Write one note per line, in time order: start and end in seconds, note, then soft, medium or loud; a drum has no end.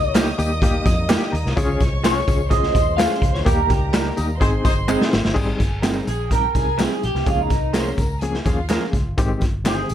0.00 0.31 C#2 loud
0.00 1.54 G3 medium
0.00 1.54 A#3 medium
0.00 1.54 D#4 medium
0.00 0.09 D#5 medium
0.00 1.54 D#5 medium
0.00 1.53 D#6 loud
0.09 0.35 C#5 medium
0.14 0.29 G3 loud
0.14 0.28 A#3 medium
0.14 0.29 A#3 medium
0.14 0.28 D#4 medium
0.14 0.30 D#4 medium
0.14 0.28 G4 loud
0.14 0.30 G4 loud
0.14 snare loud
0.14 clap loud
0.14 closed hi-hat loud
0.14 tambourine loud
0.38 0.79 D#2 medium
0.38 0.52 A#3 medium
0.38 0.52 D#4 medium
0.38 0.52 G4 loud
0.38 0.60 D#5 medium
0.38 closed hi-hat medium
0.38 tambourine medium
0.62 0.89 A#3 medium
0.62 0.89 D#4 medium
0.62 0.89 G4 loud
0.62 0.85 F5 medium
0.62 kick loud
0.62 closed hi-hat medium
0.62 tambourine soft
0.86 1.16 F2 medium
0.86 1.08 D#5 medium
0.86 kick medium
0.86 closed hi-hat medium
0.86 tambourine medium
1.09 1.23 G3 medium
1.09 1.24 A#3 medium
1.09 1.36 A#3 medium
1.09 1.36 D#4 medium
1.09 1.24 D#4 loud
1.09 1.36 G4 loud
1.09 1.24 G4 loud
1.09 1.31 G5 medium
1.09 snare loud
1.09 clap loud
1.09 closed hi-hat medium
1.09 tambourine medium
1.22 snare soft
1.32 1.43 D#2 loud
1.32 1.55 A#5 medium
1.32 closed hi-hat medium
1.45 1.55 C2 medium
1.45 snare soft
1.56 1.77 C#2 loud
1.56 3.44 F3 medium
1.56 3.44 G#3 medium
1.56 1.83 C#4 loud
1.56 3.44 C#4 medium
1.56 1.83 F4 loud
1.56 1.83 G#4 loud
1.56 2.50 C#5 medium
1.56 2.49 C#6 medium
1.56 kick loud
1.56 closed hi-hat medium
1.56 tambourine medium
1.80 2.21 C2 medium
1.80 kick medium
1.80 closed hi-hat medium
1.80 tambourine soft
2.03 2.18 G#3 medium
2.03 2.18 C#4 medium
2.03 2.17 C#4 medium
2.03 2.17 F4 medium
2.03 2.19 F4 loud
2.03 2.18 G#4 medium
2.03 2.19 G#4 loud
2.03 2.50 C#5 medium
2.03 snare loud
2.03 clap loud
2.03 closed hi-hat loud
2.03 tambourine loud
2.28 2.68 C#2 loud
2.28 2.41 C#4 medium
2.28 2.41 F4 medium
2.28 2.41 G#4 medium
2.28 kick loud
2.28 closed hi-hat medium
2.28 tambourine medium
2.50 2.77 C#4 medium
2.50 2.78 F4 medium
2.50 2.77 G#4 medium
2.50 3.44 C5 medium
2.50 2.96 D#5 loud
2.50 3.44 C6 medium
2.50 kick medium
2.50 closed hi-hat medium
2.63 snare soft
2.75 3.05 D#2 medium
2.75 kick loud
2.75 closed hi-hat medium
2.75 tambourine medium
2.97 3.13 G#3 medium
2.97 3.25 C#4 medium
2.97 3.13 C#4 loud
2.97 3.25 F4 medium
2.97 3.13 F4 loud
2.97 3.25 G#4 medium
2.97 3.14 G#4 loud
2.97 3.34 F5 loud
2.97 snare loud
2.97 clap loud
2.97 closed hi-hat medium
2.97 tambourine loud
3.11 snare soft
3.22 3.32 C#2 medium
3.22 kick medium
3.22 closed hi-hat medium
3.34 3.45 D2 medium
3.34 3.39 C#5 medium
3.34 snare soft
3.45 3.67 D#2 loud
3.45 4.40 G3 medium
3.45 3.72 A#3 loud
3.45 4.40 A#3 medium
3.45 3.72 D#4 medium
3.45 5.34 D#4 medium
3.45 3.72 G4 loud
3.45 3.70 A#4 medium
3.45 4.40 A#4 medium
3.45 4.40 A#5 medium
3.45 kick loud
3.45 closed hi-hat medium
3.45 tambourine medium
3.70 4.10 C#2 loud
3.70 4.14 G4 medium
3.70 kick medium
3.70 closed hi-hat medium
3.70 tambourine soft
3.93 4.08 G3 loud
3.93 4.07 A#3 medium
3.93 4.08 A#3 medium
3.93 4.08 D#4 medium
3.93 4.07 D#4 medium
3.93 4.07 G4 medium
3.93 4.08 G4 loud
3.93 snare loud
3.93 clap loud
3.93 closed hi-hat medium
3.93 tambourine medium
4.17 4.38 D#2 medium
4.17 4.30 A#3 medium
4.17 4.30 D#4 medium
4.17 4.27 G4 medium
4.17 4.30 G4 medium
4.17 4.27 A#4 medium
4.17 4.28 D#5 loud
4.17 closed hi-hat medium
4.17 tambourine medium
4.40 4.61 G#1 loud
4.40 5.36 G#3 medium
4.40 4.67 C4 medium
4.40 5.36 C4 medium
4.40 4.48 D#4 loud
4.40 4.68 D#4 medium
4.40 4.48 G#4 loud
4.40 4.68 G#4 loud
4.40 5.34 C5 medium
4.40 4.48 C5 loud
4.40 5.34 C6 medium
4.40 kick medium
4.40 closed hi-hat medium
4.40 tambourine soft
4.65 4.95 G1 medium
4.65 4.72 D#4 loud
4.65 4.72 G#4 loud
4.65 4.73 C5 loud
4.65 kick loud
4.65 closed hi-hat medium
4.65 tambourine medium
4.88 5.02 G#3 medium
4.88 5.15 C4 loud
4.88 5.03 C4 medium
4.88 5.15 D#4 medium
4.88 5.34 D#4 medium
4.88 5.03 D#4 medium
4.88 5.15 G#4 loud
4.88 5.34 G#4 medium
4.88 5.04 G#4 loud
4.88 5.34 C5 loud
4.88 clap loud
4.88 tambourine medium
5.01 snare medium
5.12 5.23 G#1 medium
5.12 snare loud
5.12 tambourine soft
5.25 5.35 G1 medium
5.25 snare loud
5.34 5.56 G#1 loud
5.34 5.62 G3 loud
5.34 5.62 C4 medium
5.34 5.62 D#4 medium
5.34 5.62 G#4 loud
5.34 kick loud
5.34 crash medium
5.34 tambourine medium
5.60 6.00 G1 medium
5.60 5.79 G#4 medium
5.60 5.79 G#5 medium
5.60 kick medium
5.60 closed hi-hat medium
5.60 tambourine soft
5.83 5.97 G3 medium
5.83 6.10 G3 medium
5.83 6.10 C4 medium
5.83 5.98 C4 medium
5.83 6.10 D#4 medium
5.83 5.98 D#4 medium
5.83 5.98 G4 medium
5.83 6.10 G#4 loud
5.83 6.04 A#4 medium
5.83 6.04 A#5 medium
5.83 snare loud
5.83 clap medium
5.83 closed hi-hat medium
5.83 tambourine medium
6.07 6.48 A#1 medium
6.07 6.32 G#4 medium
6.07 6.28 G#4 medium
6.07 6.28 G#5 medium
6.07 closed hi-hat medium
6.07 tambourine medium
6.31 6.45 G3 medium
6.31 6.45 C4 medium
6.31 6.45 D#4 medium
6.31 6.50 G4 medium
6.31 6.80 A#4 medium
6.31 6.45 A#4 medium
6.31 6.50 G5 loud
6.31 kick medium
6.31 closed hi-hat medium
6.31 tambourine soft
6.55 6.86 C2 medium
6.55 6.68 G3 medium
6.55 6.69 C4 medium
6.55 6.69 D#4 medium
6.55 7.00 G#4 medium
6.55 6.69 G#4 medium
6.55 7.00 G#5 loud
6.55 kick medium
6.55 closed hi-hat medium
6.55 tambourine medium
6.78 6.93 G3 medium
6.78 7.06 G3 medium
6.78 6.93 C4 medium
6.78 7.06 C4 medium
6.78 6.93 D#4 medium
6.78 7.06 D#4 medium
6.78 6.93 G4 medium
6.78 7.06 G#4 medium
6.78 7.04 G#4 medium
6.78 snare loud
6.78 clap medium
6.78 closed hi-hat medium
6.78 tambourine medium
6.92 snare soft
7.03 7.14 A#1 medium
7.03 7.28 G4 medium
7.03 closed hi-hat medium
7.03 tambourine soft
7.15 7.25 C2 medium
7.15 snare soft
7.26 7.47 C#2 loud
7.26 7.53 F3 medium
7.26 7.54 A#3 medium
7.26 7.54 C#4 medium
7.26 7.41 F4 medium
7.26 7.54 G#4 loud
7.26 kick loud
7.26 closed hi-hat medium
7.26 tambourine medium
7.41 7.77 D#4 medium
7.50 7.91 C2 medium
7.50 7.69 A#4 medium
7.50 7.70 A#5 medium
7.50 kick medium
7.50 closed hi-hat medium
7.50 tambourine soft
7.73 8.01 F3 medium
7.73 7.88 G#3 medium
7.73 8.01 A#3 medium
7.73 8.01 C#4 medium
7.73 7.89 C#4 medium
7.73 7.98 C#4 medium
7.73 7.89 F4 medium
7.73 8.01 G#4 medium
7.73 7.89 A#4 medium
7.73 7.94 C5 medium
7.73 7.94 C6 medium
7.73 snare loud
7.73 clap medium
7.73 closed hi-hat medium
7.73 tambourine medium
7.98 8.39 C#2 medium
7.98 8.17 A#4 medium
7.98 8.17 A#5 medium
7.98 kick medium
7.98 closed hi-hat medium
7.98 tambourine medium
8.21 8.36 F3 medium
8.21 8.36 A#3 medium
8.21 8.36 C#4 medium
8.21 8.41 G#4 medium
8.21 8.36 G#4 medium
8.21 8.40 G#5 medium
8.21 closed hi-hat medium
8.21 tambourine soft
8.34 snare soft
8.45 8.76 D#2 medium
8.45 8.59 F3 medium
8.45 8.59 A#3 medium
8.45 8.59 C#4 medium
8.45 8.91 F4 medium
8.45 8.59 G#4 loud
8.45 8.91 F5 medium
8.45 kick medium
8.45 closed hi-hat medium
8.45 tambourine medium
8.69 8.97 F3 loud
8.69 8.84 G#3 medium
8.69 8.97 A#3 medium
8.69 8.85 C#4 medium
8.69 8.97 C#4 medium
8.69 8.85 F4 medium
8.69 8.97 G#4 loud
8.69 8.85 A#4 medium
8.69 snare loud
8.69 clap medium
8.69 closed hi-hat medium
8.69 tambourine medium
8.93 9.04 C#2 medium
8.93 kick medium
8.93 closed hi-hat medium
8.93 tambourine soft
9.07 9.17 G1 medium
9.17 9.38 G#1 loud
9.17 9.45 D#3 loud
9.17 9.45 G#3 medium
9.17 9.45 C4 loud
9.17 9.45 G4 loud
9.17 kick loud
9.17 closed hi-hat medium
9.17 tambourine medium
9.41 9.83 G1 medium
9.41 kick medium
9.41 closed hi-hat medium
9.41 tambourine soft
9.64 9.92 D#3 medium
9.64 9.92 G#3 medium
9.64 9.80 G#3 medium
9.64 9.92 C4 medium
9.64 9.81 D#4 medium
9.64 9.92 G4 medium
9.64 9.81 G4 medium
9.64 9.94 G#4 medium
9.64 9.81 C5 medium
9.64 snare loud
9.64 clap medium
9.64 closed hi-hat medium
9.64 tambourine medium
9.89 9.94 A#1 medium
9.89 closed hi-hat medium
9.89 tambourine medium